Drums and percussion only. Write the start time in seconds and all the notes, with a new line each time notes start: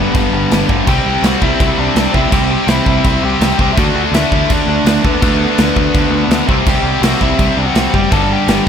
0.15 kick, crash
0.51 snare, crash
0.69 kick
0.87 kick, crash
1.24 snare, crash
1.42 kick
1.60 kick, crash
1.96 snare, crash
2.14 kick
2.32 kick, crash
2.68 snare, crash
2.86 kick
3.04 kick, crash
3.41 snare, crash
3.59 kick
3.77 kick, crash
4.14 snare, crash
4.32 kick
4.50 kick, crash
4.86 snare, crash
5.05 kick
5.22 kick, crash
5.58 snare, crash
5.77 kick
5.95 kick, crash
6.31 snare, crash
6.49 kick
6.66 kick, crash
7.03 snare, crash
7.21 kick
7.39 kick, crash
7.75 snare, crash
7.94 kick
8.12 kick, crash
8.48 snare, crash